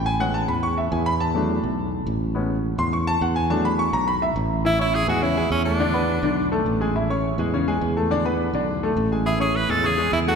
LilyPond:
<<
  \new Staff \with { instrumentName = "Grand piano" } { \time 4/4 \key a \major \tempo 4 = 209 gis''8 fis''8 a''8 b''8 cis'''8 e''8 gis''8 b''8 | a''2. r4 | r4. c'''8 cis'''8 a''8 fis''8 gis''8 | a''8 b''8 cis'''8 bes''8 b''8 e''8 r4 |
<e e' e''>8 <cis' cis'' cis'''>4 <gis gis' gis''>8 <cis cis' cis''>8 <gis gis' gis''>4 <a a' a''>8 | <d d' d''>8 <b b' b''>4 <d d' d''>4 <a a' a''>4 <gis gis' gis''>8 | <e e' e''>8 <cis' cis'' cis'''>4 <gis gis' gis''>8 <cis cis' cis''>8 <gis gis' gis''>4 <a a' a''>8 | <d d' d''>8 <b b' b''>4 <d d' d''>4 <a a' a''>4 <gis gis' gis''>8 |
<e e' e''>8 <cis' cis'' cis'''>4 <gis gis' gis''>8 <cis cis' cis''>8 <gis gis' gis''>4 <a a' a''>8 | }
  \new Staff \with { instrumentName = "Grand piano" } { \time 4/4 \key a \major r8 <gis b cis'>2.~ <gis b cis'>8 | r8 <fis a d'>8 r2. | <gis b cis'>8 r2. r8 | <fis a d'>8 r2. r8 |
r1 | r1 | r1 | r1 |
r1 | }
  \new Staff \with { instrumentName = "Tenor saxophone" } { \time 4/4 \key a \major r1 | r1 | r1 | r1 |
e'8 e'8 gis'8 fis'8 e'4 cis'8 d'8~ | d'2~ d'8 r4. | r1 | r1 |
gis'8 gis'8 b'8 a'8 gis'4 e'8 fis'8 | }
  \new Staff \with { instrumentName = "Fingered electric bass" } { \clef bass \time 4/4 \key a \major a,,4. e,4. e,4~ | e,4. b,,4. a,,4~ | a,,4. e,4. e,4~ | e,4. b,,4. a,,4~ |
a,,4. e,4. e,4~ | e,4. b,,4. a,,4~ | a,,4. e,4. e,4~ | e,4. b,,4. a,,4~ |
a,,4. e,4. e,4 | }
>>